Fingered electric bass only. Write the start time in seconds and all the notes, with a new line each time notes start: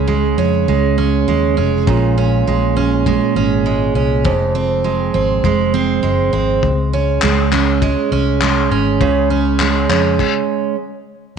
Already playing: C#2
0.38 F2
0.68 C#2
1.27 D#2
1.57 F1
1.87 A#1
2.47 A#1
3.35 G#1
3.95 C2
4.25 F1
5.14 G#1
5.44 F1
6.03 F#1
6.33 G#1
6.63 C#2
7.23 C#2
8.12 C2
8.71 G#1
9.01 C#2
9.89 F2